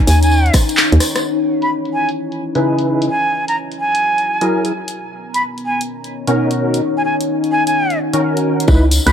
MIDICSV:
0, 0, Header, 1, 6, 480
1, 0, Start_track
1, 0, Tempo, 465116
1, 1279, Time_signature, 4, 2, 24, 8
1, 9416, End_track
2, 0, Start_track
2, 0, Title_t, "Flute"
2, 0, Program_c, 0, 73
2, 75, Note_on_c, 0, 80, 93
2, 202, Note_off_c, 0, 80, 0
2, 234, Note_on_c, 0, 80, 88
2, 558, Note_off_c, 0, 80, 0
2, 1675, Note_on_c, 0, 83, 78
2, 1756, Note_off_c, 0, 83, 0
2, 1999, Note_on_c, 0, 80, 87
2, 2152, Note_off_c, 0, 80, 0
2, 3197, Note_on_c, 0, 80, 84
2, 3563, Note_off_c, 0, 80, 0
2, 3594, Note_on_c, 0, 82, 80
2, 3676, Note_off_c, 0, 82, 0
2, 3918, Note_on_c, 0, 80, 89
2, 4605, Note_off_c, 0, 80, 0
2, 5515, Note_on_c, 0, 83, 81
2, 5596, Note_off_c, 0, 83, 0
2, 5839, Note_on_c, 0, 80, 89
2, 5992, Note_off_c, 0, 80, 0
2, 7196, Note_on_c, 0, 80, 81
2, 7249, Note_off_c, 0, 80, 0
2, 7278, Note_on_c, 0, 80, 72
2, 7378, Note_off_c, 0, 80, 0
2, 7758, Note_on_c, 0, 80, 88
2, 7884, Note_off_c, 0, 80, 0
2, 7915, Note_on_c, 0, 80, 91
2, 8238, Note_off_c, 0, 80, 0
2, 9355, Note_on_c, 0, 83, 88
2, 9416, Note_off_c, 0, 83, 0
2, 9416, End_track
3, 0, Start_track
3, 0, Title_t, "Ambient pad"
3, 0, Program_c, 1, 92
3, 0, Note_on_c, 1, 63, 97
3, 0, Note_on_c, 1, 73, 80
3, 0, Note_on_c, 1, 82, 77
3, 144, Note_off_c, 1, 82, 0
3, 249, Note_on_c, 1, 78, 96
3, 1277, Note_on_c, 1, 64, 91
3, 1278, Note_off_c, 1, 63, 0
3, 1986, Note_on_c, 1, 75, 87
3, 2060, Note_off_c, 1, 78, 0
3, 3197, Note_off_c, 1, 75, 0
3, 3200, Note_on_c, 1, 66, 74
3, 3446, Note_on_c, 1, 76, 89
3, 3885, Note_off_c, 1, 64, 0
3, 3885, Note_off_c, 1, 73, 0
3, 3966, Note_on_c, 1, 82, 85
3, 4878, Note_off_c, 1, 76, 0
3, 4881, Note_on_c, 1, 59, 80
3, 5109, Note_on_c, 1, 63, 75
3, 5378, Note_on_c, 1, 73, 87
3, 5773, Note_off_c, 1, 66, 0
3, 7040, Note_off_c, 1, 59, 0
3, 7197, Note_on_c, 1, 78, 93
3, 7758, Note_off_c, 1, 82, 0
3, 8957, Note_on_c, 1, 64, 85
3, 8959, Note_off_c, 1, 63, 0
3, 9416, Note_off_c, 1, 64, 0
3, 9416, Note_off_c, 1, 73, 0
3, 9416, Note_off_c, 1, 78, 0
3, 9416, End_track
4, 0, Start_track
4, 0, Title_t, "Synth stab"
4, 0, Program_c, 2, 62
4, 2634, Note_on_c, 2, 63, 69
4, 2635, Note_on_c, 2, 49, 78
4, 2635, Note_on_c, 2, 64, 69
4, 2635, Note_on_c, 2, 68, 70
4, 2635, Note_on_c, 2, 71, 84
4, 3188, Note_off_c, 2, 49, 0
4, 3188, Note_off_c, 2, 63, 0
4, 3188, Note_off_c, 2, 64, 0
4, 3188, Note_off_c, 2, 68, 0
4, 3188, Note_off_c, 2, 71, 0
4, 4556, Note_on_c, 2, 64, 67
4, 4556, Note_on_c, 2, 68, 72
4, 4556, Note_on_c, 2, 70, 87
4, 4557, Note_on_c, 2, 54, 79
4, 4869, Note_off_c, 2, 54, 0
4, 4869, Note_off_c, 2, 64, 0
4, 4869, Note_off_c, 2, 68, 0
4, 4869, Note_off_c, 2, 70, 0
4, 6475, Note_on_c, 2, 47, 76
4, 6475, Note_on_c, 2, 61, 75
4, 6475, Note_on_c, 2, 66, 70
4, 6475, Note_on_c, 2, 70, 86
4, 6476, Note_on_c, 2, 63, 75
4, 7029, Note_off_c, 2, 47, 0
4, 7029, Note_off_c, 2, 61, 0
4, 7029, Note_off_c, 2, 63, 0
4, 7029, Note_off_c, 2, 66, 0
4, 7029, Note_off_c, 2, 70, 0
4, 8395, Note_on_c, 2, 51, 76
4, 8395, Note_on_c, 2, 61, 72
4, 8395, Note_on_c, 2, 70, 89
4, 8396, Note_on_c, 2, 66, 72
4, 8948, Note_off_c, 2, 61, 0
4, 8948, Note_off_c, 2, 70, 0
4, 8949, Note_off_c, 2, 51, 0
4, 8949, Note_off_c, 2, 66, 0
4, 8959, Note_on_c, 2, 64, 85
4, 8959, Note_on_c, 2, 71, 98
4, 8960, Note_on_c, 2, 63, 87
4, 9130, Note_off_c, 2, 63, 0
4, 9130, Note_off_c, 2, 64, 0
4, 9130, Note_off_c, 2, 71, 0
4, 9416, End_track
5, 0, Start_track
5, 0, Title_t, "FM bass"
5, 0, Program_c, 3, 39
5, 76, Note_on_c, 3, 39, 83
5, 520, Note_off_c, 3, 39, 0
5, 954, Note_on_c, 3, 39, 77
5, 1014, Note_off_c, 3, 39, 0
5, 8959, Note_on_c, 3, 37, 95
5, 9285, Note_off_c, 3, 37, 0
5, 9355, Note_on_c, 3, 37, 82
5, 9415, Note_off_c, 3, 37, 0
5, 9416, End_track
6, 0, Start_track
6, 0, Title_t, "Drums"
6, 77, Note_on_c, 9, 46, 111
6, 81, Note_on_c, 9, 54, 90
6, 180, Note_off_c, 9, 46, 0
6, 184, Note_off_c, 9, 54, 0
6, 233, Note_on_c, 9, 42, 67
6, 239, Note_on_c, 9, 54, 47
6, 324, Note_off_c, 9, 54, 0
6, 324, Note_on_c, 9, 54, 35
6, 337, Note_off_c, 9, 42, 0
6, 427, Note_off_c, 9, 54, 0
6, 473, Note_on_c, 9, 42, 38
6, 552, Note_on_c, 9, 54, 86
6, 557, Note_on_c, 9, 36, 105
6, 557, Note_on_c, 9, 37, 70
6, 557, Note_on_c, 9, 46, 116
6, 576, Note_off_c, 9, 42, 0
6, 655, Note_off_c, 9, 54, 0
6, 660, Note_off_c, 9, 36, 0
6, 660, Note_off_c, 9, 37, 0
6, 660, Note_off_c, 9, 46, 0
6, 712, Note_on_c, 9, 54, 53
6, 714, Note_on_c, 9, 42, 68
6, 797, Note_on_c, 9, 39, 112
6, 798, Note_off_c, 9, 54, 0
6, 798, Note_on_c, 9, 54, 37
6, 817, Note_off_c, 9, 42, 0
6, 900, Note_off_c, 9, 39, 0
6, 901, Note_off_c, 9, 54, 0
6, 954, Note_on_c, 9, 42, 52
6, 1035, Note_on_c, 9, 54, 85
6, 1036, Note_on_c, 9, 37, 62
6, 1036, Note_on_c, 9, 46, 113
6, 1057, Note_off_c, 9, 42, 0
6, 1139, Note_off_c, 9, 37, 0
6, 1139, Note_off_c, 9, 46, 0
6, 1139, Note_off_c, 9, 54, 0
6, 1193, Note_on_c, 9, 37, 75
6, 1193, Note_on_c, 9, 42, 67
6, 1195, Note_on_c, 9, 54, 48
6, 1296, Note_off_c, 9, 37, 0
6, 1296, Note_off_c, 9, 42, 0
6, 1298, Note_off_c, 9, 54, 0
6, 1673, Note_on_c, 9, 42, 59
6, 1776, Note_off_c, 9, 42, 0
6, 1913, Note_on_c, 9, 42, 30
6, 2016, Note_off_c, 9, 42, 0
6, 2154, Note_on_c, 9, 42, 61
6, 2257, Note_off_c, 9, 42, 0
6, 2394, Note_on_c, 9, 42, 33
6, 2497, Note_off_c, 9, 42, 0
6, 2634, Note_on_c, 9, 42, 58
6, 2737, Note_off_c, 9, 42, 0
6, 2875, Note_on_c, 9, 42, 48
6, 2978, Note_off_c, 9, 42, 0
6, 3115, Note_on_c, 9, 42, 64
6, 3218, Note_off_c, 9, 42, 0
6, 3594, Note_on_c, 9, 42, 58
6, 3697, Note_off_c, 9, 42, 0
6, 3834, Note_on_c, 9, 42, 31
6, 3937, Note_off_c, 9, 42, 0
6, 4074, Note_on_c, 9, 42, 57
6, 4177, Note_off_c, 9, 42, 0
6, 4315, Note_on_c, 9, 42, 33
6, 4418, Note_off_c, 9, 42, 0
6, 4555, Note_on_c, 9, 42, 55
6, 4658, Note_off_c, 9, 42, 0
6, 4796, Note_on_c, 9, 42, 46
6, 4899, Note_off_c, 9, 42, 0
6, 5036, Note_on_c, 9, 42, 61
6, 5139, Note_off_c, 9, 42, 0
6, 5515, Note_on_c, 9, 42, 56
6, 5618, Note_off_c, 9, 42, 0
6, 5756, Note_on_c, 9, 42, 32
6, 5859, Note_off_c, 9, 42, 0
6, 5995, Note_on_c, 9, 42, 64
6, 6098, Note_off_c, 9, 42, 0
6, 6236, Note_on_c, 9, 42, 34
6, 6339, Note_off_c, 9, 42, 0
6, 6475, Note_on_c, 9, 42, 58
6, 6579, Note_off_c, 9, 42, 0
6, 6716, Note_on_c, 9, 42, 47
6, 6819, Note_off_c, 9, 42, 0
6, 6957, Note_on_c, 9, 42, 59
6, 7060, Note_off_c, 9, 42, 0
6, 7436, Note_on_c, 9, 42, 59
6, 7539, Note_off_c, 9, 42, 0
6, 7676, Note_on_c, 9, 42, 32
6, 7779, Note_off_c, 9, 42, 0
6, 7915, Note_on_c, 9, 42, 60
6, 8019, Note_off_c, 9, 42, 0
6, 8156, Note_on_c, 9, 42, 32
6, 8259, Note_off_c, 9, 42, 0
6, 8395, Note_on_c, 9, 42, 62
6, 8498, Note_off_c, 9, 42, 0
6, 8637, Note_on_c, 9, 42, 46
6, 8740, Note_off_c, 9, 42, 0
6, 8876, Note_on_c, 9, 42, 64
6, 8954, Note_on_c, 9, 54, 42
6, 8958, Note_on_c, 9, 36, 120
6, 8980, Note_off_c, 9, 42, 0
6, 9057, Note_off_c, 9, 54, 0
6, 9062, Note_off_c, 9, 36, 0
6, 9199, Note_on_c, 9, 54, 93
6, 9200, Note_on_c, 9, 46, 113
6, 9302, Note_off_c, 9, 54, 0
6, 9303, Note_off_c, 9, 46, 0
6, 9354, Note_on_c, 9, 54, 54
6, 9357, Note_on_c, 9, 42, 69
6, 9357, Note_on_c, 9, 76, 81
6, 9416, Note_off_c, 9, 42, 0
6, 9416, Note_off_c, 9, 54, 0
6, 9416, Note_off_c, 9, 76, 0
6, 9416, End_track
0, 0, End_of_file